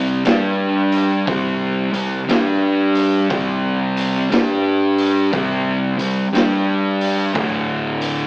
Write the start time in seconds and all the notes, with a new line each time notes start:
Already playing: C2 C3 G3 C4
0.25 G2 G3 D4 G4, snare, open hi-hat
0.92 open hi-hat
1.26 C2 C3 G3 C4, kick, open hi-hat
1.93 C2 C3 G3, open hi-hat
2.28 G2 G3 D4 G4, snare, open hi-hat
2.95 open hi-hat
3.29 C2 C3 G3 C4, kick, open hi-hat
3.97 open hi-hat
4.30 G2 G3 D4 G4, snare, open hi-hat
4.98 open hi-hat
5.32 C2 C3 G3 C4, kick, open hi-hat
5.98 C2 C3 G3, open hi-hat
6.33 G2 G3 D4 G4, snare, open hi-hat
7.01 open hi-hat
7.33 D1 D2 A2 D3, kick, open hi-hat
8.01 open hi-hat